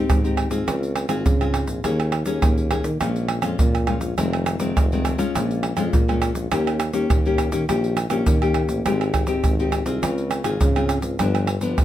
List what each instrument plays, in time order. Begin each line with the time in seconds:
Already playing: nylon-string guitar C4 D#4 G4
0.08 tuba G#2, nylon-string guitar D#3, pandeiro, tamborim, shaker, surdo
0.24 nylon-string guitar C4 D#4 G4, pandeiro, shaker
0.37 pandeiro, tamborim
0.51 tuba G#2, nylon-string guitar C4 F4 G#4, pandeiro, shaker
0.67 tuba C#2, nylon-string guitar C#3, pandeiro, tamborim, shaker, surdo
0.83 pandeiro, shaker
0.96 pandeiro, tamborim
1.09 tuba G#1, nylon-string guitar C4 F4 G#4, pandeiro, tamborim, shaker
1.25 nylon-string guitar G#2, tuba C#3, pandeiro, shaker, surdo
1.41 nylon-string guitar C4 F4 G#4, pandeiro, tamborim, shaker
1.54 pandeiro, tamborim
1.67 tuba A#1, pandeiro, shaker
1.84 tuba D#2, nylon-string guitar D#3 A#3 C#4 G#4, pandeiro, tamborim, shaker, surdo
2.00 pandeiro, tamborim, shaker
2.12 pandeiro, tamborim
2.26 tuba D#2, nylon-string guitar A#3 C#4 G#4, pandeiro, shaker
2.42 tuba D#2, nylon-string guitar A#2, pandeiro, tamborim, shaker, surdo
2.58 pandeiro, shaker
2.71 nylon-string guitar A#3 C#4 G#4, pandeiro, tamborim
2.84 tuba D#3, pandeiro, shaker
3.01 tuba A#1, nylon-string guitar A#2 G#3 C#4 F4, pandeiro, tamborim, shaker, surdo
3.16 pandeiro, shaker
3.28 pandeiro, tamborim
3.42 tuba F2, nylon-string guitar G#3 C#4 F4, pandeiro, tamborim, shaker
3.59 nylon-string guitar F2, tuba A#2, pandeiro, shaker, surdo
3.75 pandeiro, tamborim, shaker
3.87 nylon-string guitar G#3 C#4 F4, pandeiro, tamborim
4.01 tuba A#1, pandeiro, shaker
4.17 tuba F1, nylon-string guitar F2 D#3 G#3 C4, pandeiro, tamborim, shaker, surdo
4.33 pandeiro, tamborim, shaker
4.46 pandeiro, tamborim, shaker
4.60 tuba F1, nylon-string guitar D#3 G#3 C4, pandeiro, shaker
4.76 tuba F1, nylon-string guitar C3, pandeiro, tamborim, shaker, surdo
4.92 nylon-string guitar D#3 G#3 C4, pandeiro, shaker
5.05 pandeiro, tamborim, shaker
5.18 nylon-string guitar G#3 C#4 F4, pandeiro, shaker
5.34 tuba A#1, nylon-string guitar A#2, pandeiro, tamborim, shaker, surdo
5.51 pandeiro, shaker
5.63 pandeiro, tamborim
5.77 tuba F2, nylon-string guitar G#3 C#4 F4, pandeiro, tamborim, shaker
5.93 nylon-string guitar F2, tuba A#2, pandeiro, shaker, surdo
6.08 nylon-string guitar G#3 C#4 F4, pandeiro, tamborim, shaker
6.22 pandeiro, tamborim, shaker
6.35 tuba A#1, pandeiro, shaker
6.52 tuba D#2, nylon-string guitar D#3 A#3 C#4 G4, pandeiro, tamborim, shaker, surdo
6.67 pandeiro, tamborim, shaker
6.80 pandeiro, tamborim, shaker
6.93 tuba D#2, nylon-string guitar A#3 C#4 G4, pandeiro, shaker
7.10 tuba D#2, nylon-string guitar A#2, pandeiro, tamborim, shaker, surdo
7.25 nylon-string guitar A#3 C#4 G4, pandeiro, shaker
7.38 pandeiro, tamborim, shaker
7.52 tuba D#3, nylon-string guitar A#3 C#4 G4, pandeiro, shaker
7.68 tuba A#1, nylon-string guitar D#3 A#3 C#4 G4, pandeiro, tamborim, shaker, surdo
7.84 pandeiro, shaker
7.97 pandeiro, tamborim, shaker
8.10 tuba A#1, nylon-string guitar A#3 C#4 G4, pandeiro, tamborim, shaker
8.26 nylon-string guitar A#2, tuba D#3, pandeiro, shaker, surdo
8.42 nylon-string guitar A#3 C#4 G4, pandeiro, tamborim, shaker
8.54 pandeiro, tamborim
8.69 tuba A1, pandeiro, shaker
8.85 tuba G#1, nylon-string guitar G#3 C4 D#4 G4, pandeiro, tamborim, shaker, surdo
9.01 pandeiro, tamborim, shaker
9.14 pandeiro, tamborim, shaker, surdo
9.27 tuba G#1, nylon-string guitar C4 D#4 G4, pandeiro, shaker
9.44 tuba G#1, nylon-string guitar D#3, pandeiro, tamborim, shaker, surdo
9.59 nylon-string guitar C4 D#4 G4, pandeiro, shaker
9.72 pandeiro, tamborim, shaker
9.86 tuba C2, nylon-string guitar C4 F4 G#4, pandeiro, shaker
10.03 tuba C#2, nylon-string guitar C#3, pandeiro, tamborim, shaker, surdo
10.18 pandeiro, shaker
10.31 pandeiro, tamborim, shaker
10.44 tuba G#1, nylon-string guitar C4 F4 G#4, pandeiro, tamborim, shaker
10.61 nylon-string guitar G#2, tuba C#3, pandeiro, shaker, surdo
10.76 nylon-string guitar C4 F4 G#4, pandeiro, tamborim, shaker
10.89 pandeiro, tamborim, shaker
11.02 tuba C#2, pandeiro, shaker
11.19 tuba G1, nylon-string guitar G2 F3 B3 D4, pandeiro, tamborim, shaker, surdo
11.35 pandeiro, tamborim, shaker
11.47 pandeiro, tamborim
11.61 tuba G1, nylon-string guitar F3 B3 D4, pandeiro, shaker
11.78 tuba G1, nylon-string guitar D3, pandeiro, tamborim, shaker, surdo